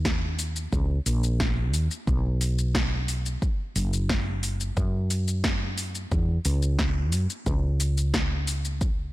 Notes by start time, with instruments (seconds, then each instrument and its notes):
Already playing: fretless electric bass D#2
0.05 kick, snare, shaker
0.39 open hi-hat, shaker
0.56 shaker
0.73 fretless electric bass C#2, kick, shaker
1.06 fretless electric bass A#1, open hi-hat, shaker
1.23 shaker
1.40 kick, snare, shaker
1.74 fretless electric bass D#2, open hi-hat, shaker
1.91 shaker
2.07 fretless electric bass B1, kick, shaker
2.41 open hi-hat, shaker
2.59 shaker
2.75 kick, snare, shaker
3.08 open hi-hat, shaker
3.26 shaker
3.42 kick, shaker
3.76 fretless electric bass F#1, open hi-hat, shaker
3.93 shaker
4.09 kick, snare, shaker
4.43 open hi-hat, shaker
4.61 shaker
4.77 fretless electric bass F#2, kick, shaker
5.10 open hi-hat, shaker
5.28 shaker
5.44 kick, snare, shaker
5.78 open hi-hat, shaker
5.95 shaker
6.12 fretless electric bass E2, kick, shaker
6.45 fretless electric bass C#2, open hi-hat, shaker
6.62 shaker
6.79 kick, snare, shaker
7.12 fretless electric bass F#2, open hi-hat, shaker
7.30 shaker
7.46 fretless electric bass C#2, kick, shaker
7.80 open hi-hat, shaker
7.98 shaker
8.14 kick, snare, shaker
8.47 open hi-hat, shaker
8.65 shaker
8.81 kick, shaker